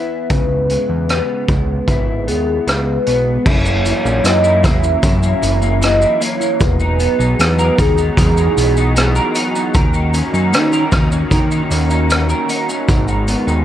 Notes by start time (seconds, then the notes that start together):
Already playing: E3 B3 E4 G#4 B4
0.30 C#2 C#3, kick, closed hi-hat
0.70 G#3, closed hi-hat
0.89 E2
1.09 B3, cross-stick, closed hi-hat
1.48 C#2 G#3, kick, closed hi-hat
1.88 G#1 E4, kick, closed hi-hat
2.28 D#2 B3 G#4, closed hi-hat
2.67 C#2 G#3 B4, cross-stick, closed hi-hat
3.06 B1 B3, closed hi-hat
3.46 F#1 F#2 F#3 C#4 E4 C#5 A#5, kick, crash
3.66 A#3, shaker
3.86 E3, closed hi-hat, shaker
4.05 A#1 A#3, shaker
4.24 F#2 E3 D#5, cross-stick, closed hi-hat, shaker
4.44 E4, shaker
4.63 E2 A#3 E5, kick, cross-stick, closed hi-hat, shaker
4.83 E3, shaker
5.03 F#2 E4 E5, kick, closed hi-hat, shaker
5.22 A#3, shaker
5.42 F#1 E3, closed hi-hat, shaker
5.61 A#3, shaker
5.81 E3 D#5, cross-stick, closed hi-hat, shaker
6.00 E4, shaker
6.20 A#3 C#5, closed hi-hat, shaker
6.40 E3, shaker
6.60 E1 F#3 D#4 F#4 G#4 B4, kick, closed hi-hat, shaker
6.80 D#4, shaker
6.99 B3, closed hi-hat, shaker
7.19 B1 D#4, shaker
7.39 E2 B3, cross-stick, closed hi-hat, shaker
7.59 A#4, shaker
7.78 D#2 D#4 G#4, kick, closed hi-hat, shaker
7.98 B3, shaker
8.17 E2 E3 A#4, kick, closed hi-hat, shaker
8.37 D#4, shaker
8.57 B1 B3, closed hi-hat, shaker
8.77 D#4, shaker
8.96 B3, cross-stick, closed hi-hat, shaker
9.16 A#4, shaker
9.35 D#4, closed hi-hat, shaker
9.55 B3, shaker
9.73 D#2 D#3 A#3 C#4 A#4, kick, closed hi-hat, shaker
9.94 D#4, shaker
10.14 C#4, closed hi-hat, shaker
10.34 F#2 D#4, shaker
10.53 D#3 C#4, cross-stick, closed hi-hat, shaker
10.73 A#4, shaker
10.92 D#2 D#4, kick, cross-stick, closed hi-hat, shaker
11.12 C#4, shaker
11.31 D#3 A#4, kick, closed hi-hat, shaker
11.51 D#4, shaker
11.71 D#2 C#4, closed hi-hat, shaker
11.90 D#4, shaker
12.10 C#4, cross-stick, closed hi-hat, shaker
12.29 A#4, shaker
12.49 D#4, closed hi-hat, shaker
12.69 C#4, shaker
12.88 G#1 G#2 G#3 B3 A#4, kick, closed hi-hat, shaker
13.08 D#4, shaker
13.28 B3, closed hi-hat, shaker
13.47 D#2 D#4, shaker